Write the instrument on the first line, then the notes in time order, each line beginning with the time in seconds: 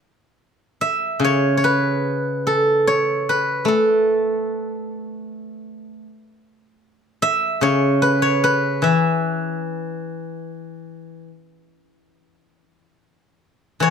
guzheng
0.81 E5
1.20 C#3
1.24 C#5
1.57 C#5
1.64 B4
2.47 A4
2.87 C#5
3.29 B4
3.65 A3 A4
7.22 E5
7.61 C#3 C#5
8.02 B4
8.22 C#5
8.44 B4
8.82 E3 E5
13.80 E3 C#5